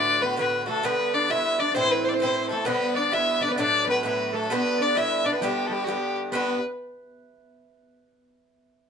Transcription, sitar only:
0.00 0.20 D4 loud
0.23 0.38 B3 medium
0.40 0.66 B3 medium
0.68 0.84 A3 medium
0.85 1.11 B3 medium
1.14 1.29 D4 loud
1.30 1.60 E4 loud
1.60 1.70 D4 medium
1.71 1.76 D4 medium
1.76 2.11 C4 medium
2.14 2.21 C4 medium
2.24 2.52 C4 medium
2.52 2.67 A3 medium
2.67 2.97 B3 medium
2.97 3.12 D4 medium
3.13 3.42 E4 medium
3.42 3.50 D4 medium
3.51 3.58 B3 medium
3.58 3.88 D4 medium
3.87 4.04 B3 medium
4.05 4.34 B3 medium
4.34 4.49 A3 medium
4.50 4.77 B3 medium
4.80 4.95 D4 medium
4.97 5.25 E4 medium
5.26 5.34 D4 medium
5.33 5.41 B3 medium
5.41 5.69 G3 medium
5.71 5.87 G3 medium
5.88 5.96 G3 medium
6.32 6.59 B3 medium

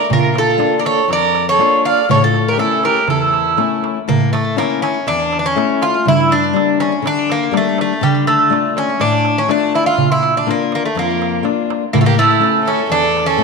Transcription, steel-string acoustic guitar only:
0.10 0.59 A#2 medium
0.58 0.99 A#3 medium
0.58 0.99 D4 soft
0.58 1.00 F4 medium
1.08 1.57 F2 medium
1.59 1.99 A#3 medium
1.59 1.99 D4 soft
1.59 1.99 F4 medium
2.09 2.58 A2 medium
2.57 2.98 A3 medium
2.57 2.98 C#4 soft
2.57 2.98 E4 medium
3.07 3.56 E2 medium
3.57 3.98 A3 medium
3.57 3.98 C#4 soft
3.57 3.98 E4 medium
4.08 4.56 A2 medium
4.56 4.96 A3 soft
4.56 4.96 C#4 soft
4.56 4.97 E4 medium
5.07 5.55 E2 medium
5.56 5.95 A3 medium
5.56 5.95 C#4 soft
5.56 5.96 E4 medium
6.05 6.53 G2 medium
6.53 6.93 G3 soft
6.53 6.93 A#3 soft
6.53 6.93 D4 medium
7.02 7.51 D3 medium
7.51 7.91 G3 medium
7.51 7.92 A#3 soft
7.51 7.92 D4 medium
8.01 8.49 D3 medium
8.50 8.90 A3 medium
8.50 8.90 D4 soft
8.50 8.90 F4 medium
9.00 9.47 A2 medium
9.49 9.88 A3 medium
9.49 9.88 D4 medium
9.49 9.88 F4 medium
9.97 10.45 A#2 medium
10.47 10.86 A#3 medium
10.47 10.86 D4 soft
10.47 10.87 F4 medium
10.95 11.43 F2 medium
11.43 11.83 A#3 medium
11.43 11.83 D4 soft
11.43 11.84 F4 medium
11.93 12.41 A2 medium
12.40 12.80 A3 soft
12.40 12.80 C#4 soft
12.40 12.81 E4 medium
12.90 13.37 E2 medium
13.37 13.44 A3 medium
13.37 13.44 C#4 soft
13.37 13.44 E4 medium

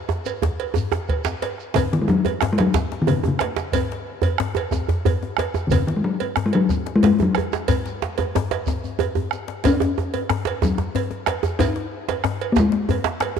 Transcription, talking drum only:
1.75 1.94 C#3 medium
1.93 2.03 D#3 medium
2.02 2.11 G#3 medium
2.10 2.54 F#3 loud
2.53 2.62 G#3 loud
2.60 3.03 F#3 loud
3.02 3.09 D#3 medium
3.09 3.18 C#3 medium
3.19 3.29 D#3 medium
3.28 3.63 C#3 medium
5.67 5.73 D#3 medium
5.72 5.89 C#3 medium
5.87 5.98 D#3 medium
5.96 6.06 G#3 medium
6.04 6.47 F#3 loud
6.46 6.57 G#3 loud
6.55 6.97 F#3 loud
6.96 7.03 G#3 loud
7.04 7.08 G#3 medium
7.13 7.24 G#3 medium
7.23 7.58 F#3 medium
9.67 10.66 C#4 loud
10.65 11.45 F#3 loud
11.59 12.47 D#4 loud
12.52 12.61 A#3 medium
12.60 13.40 G#3 loud

